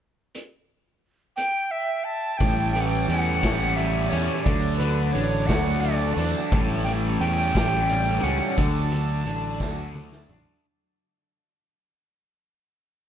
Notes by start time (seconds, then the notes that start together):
0.35 closed hi-hat
1.36 G5, closed hi-hat
1.71 E5
2.04 A5
2.38 A1 A2 G3 C#4 A4 G5, kick, closed hi-hat
2.72 G5, closed hi-hat
2.76 E3
2.81 F#5
2.86 G5
3.07 E2 C#4 G5, closed hi-hat
3.18 F#5
3.43 A1 G4, kick, snare, closed hi-hat
3.76 G3 E5, closed hi-hat
4.09 E2 C#4 C#5, closed hi-hat
4.42 D2 F#3 D4 D5, kick, closed hi-hat
4.46 D3
4.77 B4, closed hi-hat
4.81 D3
5.12 A1 D4 C#5, closed hi-hat
5.47 D2 F#4 F#5, kick, snare, closed hi-hat
5.81 A3 D5, closed hi-hat
6.14 E2 D4 A5, closed hi-hat
6.52 A1 A2 G3 C#4, kick, closed hi-hat
6.84 E3 G5, closed hi-hat
7.20 E2 C#4 G5, closed hi-hat
7.55 A1 G4, kick, snare, closed hi-hat
7.89 G3, closed hi-hat
8.23 C#2 C#4 F#5, closed hi-hat
8.57 D2 D3 F#3 D4 A4 A5, kick, closed hi-hat
8.92 D3, closed hi-hat
9.26 A1 D4, closed hi-hat
9.60 D2 F#4, kick, snare
9.95 A3, mid tom
10.12 snare
10.29 A1 D4, floor tom